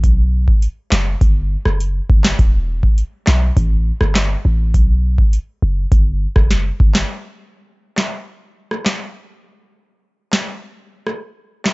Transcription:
<<
  \new Staff \with { instrumentName = "808-style bass" } { \clef bass \time 4/4 \key b \phrygian \tempo 4 = 102 b,,4 r8 fis,,8 g,,8. fis,,8. g,,8 | e,,4 r8 b,,8 a,,8. g,,8. a,,8 | b,,4 r8 fis,,8 g,,8. fis,,8. g,,8 | r1 |
r1 | }
  \new DrumStaff \with { instrumentName = "Drums" } \drummode { \time 4/4 <hh bd>8. bd16 hh8 <hc sn>8 <hh bd>8. ss16 hh8 bd16 <hc sn>16 | <hh bd>8. bd16 hh8 <hc sn>8 <hh bd>8. ss16 <hc hh sn>4 | <hh bd>8. bd16 hh4 <hh bd>8. <bd ss>16 <hh sn>8 bd16 <hc sn>16 | r4 r8 <hc sn>8 r8. ss16 <hc sn>4 |
r4 r8 <hc sn>8 r8. ss16 r8. <hc sn>16 | }
>>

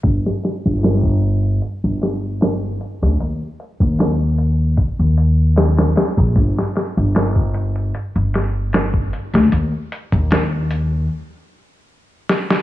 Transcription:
<<
  \new Staff \with { instrumentName = "Upright bass" } { \clef bass \time 4/4 \key g \minor \tempo 4 = 76 g,,16 r8 g,,4~ g,,16 r16 g,,4~ g,,16 r16 d,16 | ees,16 r8 ees,4~ ees,16 r16 ees,4~ ees,16 r16 bes,,16 | g,,16 r8 g,,4~ g,,16 r16 g,,4~ g,,16 r16 d,16 | ees,16 r8 ees,4~ ees,16 r2 | }
  \new DrumStaff \with { instrumentName = "Drums" } \drummode { \time 4/4 <hh bd>16 sn16 <hh sn>8 <hh sn>16 bd16 hh16 hh16 hh8 <hh sn>8 <hh sn>8 hh16 sn16 | hh8 hh16 bd16 <hh sn>8 hh8 <hh bd>8 hh8 <hh sn>16 <hh sn>16 <hh sn>16 bd16 | <hh bd>16 sn16 <hh sn>8 <hh sn>16 bd16 hh16 hh16 hh8 <hh sn>8 <hh sn>16 bd16 hh16 sn16 | hh8 hh16 bd16 <hh sn>8 hh8 r4 r8 sn16 sn16 | }
>>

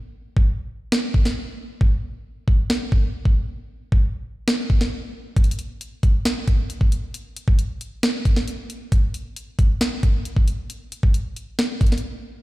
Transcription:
\new DrumStaff \with { instrumentName = "Drums" } \drummode { \time 4/4 \tempo 4 = 135 r8. bd16 r4 sn8 bd16 sn16 r4 | bd4 r8 bd8 sn8 bd8 r16 bd8. | r8. bd16 r4 sn8 bd16 sn16 r4 | \tuplet 3/2 { <hh bd>16 hh16 hh16 hh16 r16 r16 } hh8 <hh bd>8 <hh sn>8 <hh bd>8 hh16 bd16 hh8 |
hh8 hh16 bd16 hh8 hh8 <hh sn>8 <hh bd>16 sn16 hh8 hh8 | <hh bd>8 hh8 hh8 <hh bd>8 <hh sn>8 <hh bd>8 hh16 bd16 hh8 | hh8 hh16 bd16 hh8 hh8 <hh sn>8 <hh bd>32 hh32 <hh sn>32 hh32 r4 | }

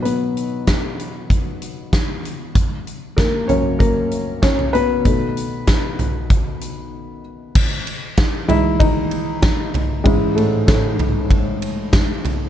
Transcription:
<<
  \new Staff \with { instrumentName = "Felt piano" } { \time 4/4 \key b \major \tempo 4 = 96 << { <b b'>2.~ <b b'>8 r8 | r4 <ais ais'>8 <cis' cis''>8 <ais ais'>4 <cis' cis''>8 <b b'>8~ | <b b'>2.~ <b b'>8 r8 | \key e \major r4. e'8 <dis dis'>2 |
<gis, gis>8 <a, a>8 <a, a>2 r4 | } \\ { <b, dis fis>2.~ <b, dis fis>8 r8 | r4. <fis, cis ais>8 r2 | <b, dis a>8 r2. r8 | r4. <e gis dis'>4. r4 |
<e cis' e'>8 r2. r8 | } >> }
  \new DrumStaff \with { instrumentName = "Drums" } \drummode { \time 4/4 hh8 hh8 <hh bd sn>8 hh8 <hh bd>8 hh8 <hh bd sn>8 hh8 | <hh bd>8 hh8 <hh bd sn>8 <hh tomfh>8 <hh bd>8 hh8 <hh bd sn>16 tomfh16 hh8 | <hh bd>8 hh8 <hh bd sn>8 <hh tomfh>8 <hh bd>8 hh8 r4 | <cymc bd>8 cymr8 <bd cymr sn>8 <cymr tomfh>8 <bd cymr>8 cymr8 <bd cymr sn>8 <cymr tomfh>8 |
<bd cymr>8 cymr8 <bd cymr sn>8 <cymr tomfh>8 <bd cymr>8 cymr8 <bd cymr sn>8 <cymr tomfh>8 | }
>>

